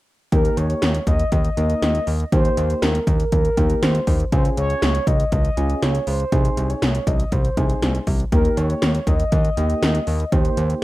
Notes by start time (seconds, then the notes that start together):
0.32 D#2 A#3 D#4 G4 A#4, kick, closed hi-hat
0.45 closed hi-hat
0.57 D#2 C#5, closed hi-hat
0.70 closed hi-hat
0.82 D#2, snare, closed hi-hat
0.95 closed hi-hat
1.07 D#2 D#5, kick, closed hi-hat
1.19 closed hi-hat
1.32 D#2 D#5, kick, closed hi-hat
1.45 closed hi-hat
1.57 D#2 A#3 D#4 A#4, closed hi-hat
1.70 closed hi-hat
1.82 D#2, snare, closed hi-hat
1.95 closed hi-hat
2.07 D#2, open hi-hat
2.20 closed hi-hat
2.32 D#2 A#3 D#4 G4 C5, kick, closed hi-hat
2.45 closed hi-hat
2.57 D#2, closed hi-hat
2.70 closed hi-hat
2.82 D#2 A#4, snare, closed hi-hat
2.95 closed hi-hat
3.07 D#2, kick, closed hi-hat
3.20 closed hi-hat
3.32 D#2 A#4, kick, closed hi-hat
3.45 closed hi-hat
3.57 D#2 A#3 D#4 G4, kick, closed hi-hat
3.70 closed hi-hat
3.82 D#2 C5, snare, closed hi-hat
3.95 closed hi-hat
4.07 D#2, kick, open hi-hat
4.20 closed hi-hat
4.32 C#2 C#4 F4 G#4 C5, kick, closed hi-hat
4.45 closed hi-hat
4.57 C#2 C#5, closed hi-hat
4.70 closed hi-hat
4.82 C#2, snare, closed hi-hat
4.95 closed hi-hat
5.07 C#2 D#5, kick, closed hi-hat
5.20 closed hi-hat
5.32 C#2 D#5, kick, closed hi-hat
5.45 closed hi-hat
5.57 C#2 C#4 F4 G#4, closed hi-hat
5.70 closed hi-hat
5.82 C#2 C#5, snare, closed hi-hat
5.95 closed hi-hat
6.07 C#2 C5, open hi-hat
6.20 closed hi-hat
6.32 C2 C4 D#4 G#4, kick, closed hi-hat
6.45 closed hi-hat
6.57 C2, closed hi-hat
6.70 C#5, closed hi-hat
6.82 C2, snare, closed hi-hat
6.95 closed hi-hat
7.07 C2 D#5, kick, closed hi-hat
7.20 closed hi-hat
7.32 C2 C5, kick, closed hi-hat
7.45 closed hi-hat
7.57 C2 C4 D#4 G#4, kick, closed hi-hat
7.70 closed hi-hat
7.82 C2, snare, closed hi-hat
7.95 closed hi-hat
8.07 C2, kick, open hi-hat
8.20 closed hi-hat
8.32 D#2 A#3 D#4 G4 A#4, kick, closed hi-hat
8.45 closed hi-hat
8.57 D#2 C#5, closed hi-hat
8.70 closed hi-hat
8.82 D#2, snare, closed hi-hat
8.95 closed hi-hat
9.07 D#2 D#5, kick, closed hi-hat
9.20 closed hi-hat
9.32 D#2 D#5, kick, closed hi-hat
9.45 closed hi-hat
9.57 D#2 A#3 D#4 G4, closed hi-hat
9.70 closed hi-hat
9.82 D#2, snare, closed hi-hat
9.95 closed hi-hat
10.07 D#2, open hi-hat
10.20 closed hi-hat
10.32 D#2 A#3 D#4 G4 C5, kick, closed hi-hat
10.45 closed hi-hat
10.57 D#2, closed hi-hat
10.70 closed hi-hat